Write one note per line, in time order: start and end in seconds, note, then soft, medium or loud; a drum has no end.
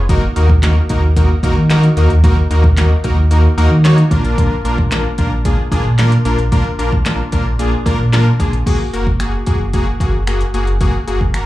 0.00 0.28 F1 medium
0.09 0.21 A#3 loud
0.09 0.22 D#4 loud
0.09 0.22 F#4 loud
0.09 0.22 A#4 loud
0.09 kick loud
0.09 closed hi-hat medium
0.36 0.80 D#2 medium
0.36 0.48 A#3 medium
0.36 0.48 D#4 medium
0.36 0.48 F#4 medium
0.36 0.48 A#4 medium
0.36 closed hi-hat medium
0.49 kick medium
0.63 0.75 A#3 medium
0.63 0.75 D#4 medium
0.63 0.75 F#4 medium
0.63 0.75 A#4 loud
0.63 snare loud
0.63 clap loud
0.63 closed hi-hat loud
0.89 1.33 D#2 medium
0.89 1.02 A#3 medium
0.89 1.02 D#4 medium
0.89 1.02 F#4 medium
0.89 1.02 A#4 loud
0.89 kick medium
0.89 closed hi-hat medium
1.16 1.29 A#3 medium
1.16 1.29 D#4 medium
1.16 1.29 F#4 medium
1.16 1.29 A#4 loud
1.16 kick loud
1.16 closed hi-hat loud
1.43 1.54 D#2 loud
1.43 1.56 A#3 loud
1.43 1.56 D#4 loud
1.43 1.56 F#4 loud
1.43 1.56 A#4 loud
1.43 kick loud
1.43 closed hi-hat medium
1.57 1.89 D#3 medium
1.70 1.82 A#3 loud
1.70 1.82 D#4 loud
1.70 1.82 F#4 loud
1.70 1.83 A#4 loud
1.70 snare medium
1.70 clap loud
1.70 closed hi-hat medium
1.83 closed hi-hat medium
1.97 2.08 D#2 medium
1.97 2.09 A#3 medium
1.97 2.09 D#4 medium
1.97 2.09 F#4 medium
1.97 2.09 A#4 loud
1.97 closed hi-hat medium
2.10 2.43 D#2 medium
2.10 closed hi-hat soft
2.24 2.36 A#3 loud
2.24 2.36 D#4 loud
2.24 2.36 F#4 loud
2.24 2.36 A#4 loud
2.24 kick loud
2.24 closed hi-hat medium
2.50 2.94 D#2 medium
2.50 2.63 A#3 medium
2.50 2.63 D#4 medium
2.50 2.63 F#4 medium
2.50 2.63 A#4 loud
2.50 closed hi-hat medium
2.64 kick loud
2.77 2.89 A#3 medium
2.77 2.90 D#4 medium
2.77 2.90 F#4 medium
2.77 2.90 A#4 medium
2.77 snare loud
2.77 clap loud
2.77 closed hi-hat loud
3.04 3.48 D#2 loud
3.04 3.16 A#3 medium
3.04 3.16 D#4 medium
3.04 3.16 F#4 medium
3.04 3.16 A#4 loud
3.04 kick medium
3.04 closed hi-hat medium
3.31 3.43 A#3 medium
3.31 3.43 D#4 medium
3.31 3.43 F#4 medium
3.31 3.43 A#4 loud
3.31 closed hi-hat loud
3.57 3.68 D#2 loud
3.57 3.70 A#3 loud
3.57 3.70 D#4 loud
3.57 3.70 F#4 loud
3.57 3.70 A#4 loud
3.57 closed hi-hat medium
3.71 4.04 D#3 medium
3.84 3.96 A#3 loud
3.84 3.97 D#4 loud
3.84 3.97 F#4 loud
3.84 3.97 C#5 loud
3.84 snare loud
3.84 clap loud
3.84 closed hi-hat medium
3.98 closed hi-hat medium
4.11 4.22 A#1 medium
4.11 4.54 A#3 medium
4.11 4.54 D4 medium
4.11 4.54 F4 medium
4.11 4.54 A#4 loud
4.11 kick loud
4.11 closed hi-hat medium
4.25 4.57 A#1 medium
4.25 closed hi-hat medium
4.38 kick loud
4.38 closed hi-hat medium
4.65 5.08 A#1 medium
4.65 4.77 A#3 medium
4.65 4.77 D4 medium
4.65 4.77 F4 medium
4.65 4.77 A#4 medium
4.65 closed hi-hat medium
4.78 kick medium
4.91 5.04 A#3 medium
4.91 5.04 D4 medium
4.91 5.04 F4 medium
4.91 5.04 A#4 loud
4.91 snare loud
4.91 clap loud
4.91 closed hi-hat loud
5.18 5.62 A#1 loud
5.18 5.30 A#3 medium
5.18 5.30 D4 medium
5.18 5.31 F4 medium
5.18 5.31 A#4 loud
5.18 kick medium
5.18 closed hi-hat medium
5.45 5.57 A#3 medium
5.45 5.57 D4 medium
5.45 5.57 F4 medium
5.45 5.57 G#4 loud
5.45 kick medium
5.45 closed hi-hat loud
5.72 5.83 A#1 loud
5.72 5.84 A#3 loud
5.72 5.84 D4 loud
5.72 5.84 F4 loud
5.72 5.84 G#4 loud
5.72 kick medium
5.72 closed hi-hat medium
5.85 6.18 A#2 medium
5.98 6.11 A#3 loud
5.98 6.11 D4 loud
5.98 6.11 F4 loud
5.98 6.11 A#4 loud
5.98 snare loud
5.98 clap loud
5.98 closed hi-hat medium
6.12 closed hi-hat medium
6.25 6.36 A#1 medium
6.25 6.38 A#3 medium
6.25 6.38 D4 medium
6.25 6.38 F4 medium
6.25 6.38 A#4 loud
6.25 closed hi-hat medium
6.38 6.71 A#1 medium
6.38 closed hi-hat soft
6.52 6.64 A#3 loud
6.52 6.64 D4 loud
6.52 6.64 F4 loud
6.52 6.65 A#4 loud
6.52 kick loud
6.52 closed hi-hat medium
6.79 7.23 A#1 medium
6.79 6.91 A#3 medium
6.79 6.91 D4 medium
6.79 6.91 F4 medium
6.79 6.91 A#4 loud
6.79 closed hi-hat medium
6.92 kick medium
7.05 7.18 A#3 medium
7.05 7.18 D4 medium
7.05 7.18 F4 medium
7.05 7.18 A#4 medium
7.05 snare loud
7.05 clap loud
7.05 closed hi-hat loud
7.32 7.76 A#1 medium
7.32 7.44 A#3 medium
7.32 7.45 D4 medium
7.32 7.45 F4 medium
7.32 7.45 A#4 loud
7.32 kick medium
7.32 closed hi-hat medium
7.59 7.71 A#3 medium
7.59 7.71 D4 medium
7.59 7.72 F4 medium
7.59 7.72 G#4 loud
7.59 closed hi-hat loud
7.86 7.97 A#1 loud
7.86 7.98 A#3 loud
7.86 7.98 D4 loud
7.86 7.98 F4 loud
7.86 7.98 A#4 loud
7.86 kick loud
7.86 closed hi-hat medium
8.00 8.32 A#2 medium
8.12 8.25 A#3 loud
8.12 8.25 D4 loud
8.12 8.25 F4 loud
8.12 8.25 A#4 loud
8.12 snare medium
8.12 clap loud
8.12 closed hi-hat medium
8.39 8.50 A#1 medium
8.39 8.52 A#3 medium
8.39 8.52 D4 medium
8.39 8.52 F4 medium
8.39 8.52 G#4 medium
8.39 kick loud
8.39 closed hi-hat medium
8.53 8.64 A#1 medium
8.53 closed hi-hat soft
8.66 8.79 A#3 loud
8.66 8.79 F#4 loud
8.66 8.79 G#4 loud
8.66 kick loud
8.66 closed hi-hat medium
8.66 crash medium
8.93 9.37 F#1 medium
8.93 9.05 A#3 medium
8.93 9.05 F#4 medium
8.93 9.06 A#4 medium
8.93 closed hi-hat medium
9.07 kick medium
9.20 9.32 A#3 medium
9.20 9.32 F#4 medium
9.20 9.32 G#4 medium
9.20 finger snap loud
9.20 closed hi-hat loud
9.46 9.58 F#2 loud
9.46 9.59 A#3 medium
9.46 9.59 F#4 medium
9.46 9.59 G#4 loud
9.46 kick medium
9.46 closed hi-hat medium
9.60 9.93 F#1 medium
9.73 9.86 A#3 loud
9.73 9.86 F#4 loud
9.73 9.86 G#4 loud
9.73 kick medium
9.73 closed hi-hat medium
10.00 10.44 F#1 medium
10.00 10.13 A#3 medium
10.00 10.13 F#4 medium
10.00 10.13 G#4 medium
10.00 kick medium
10.00 closed hi-hat medium
10.27 10.39 A#3 medium
10.27 10.39 F#4 medium
10.27 10.40 G#4 medium
10.27 finger snap loud
10.27 closed hi-hat medium
10.41 closed hi-hat medium
10.54 10.97 F#1 medium
10.54 10.66 A#3 medium
10.54 10.66 F#4 medium
10.54 10.66 G#4 medium
10.54 closed hi-hat medium
10.67 closed hi-hat soft
10.81 10.93 A#3 loud
10.81 10.93 F#4 loud
10.81 10.93 G#4 loud
10.81 kick loud
10.81 closed hi-hat medium
11.07 11.46 F#1 medium
11.07 11.20 A#3 medium
11.07 11.20 F#4 medium
11.07 11.20 G#4 medium
11.07 closed hi-hat medium
11.21 kick medium
11.34 11.46 A#3 medium
11.34 11.46 F#4 medium
11.34 11.46 A#4 loud
11.34 finger snap loud
11.34 closed hi-hat loud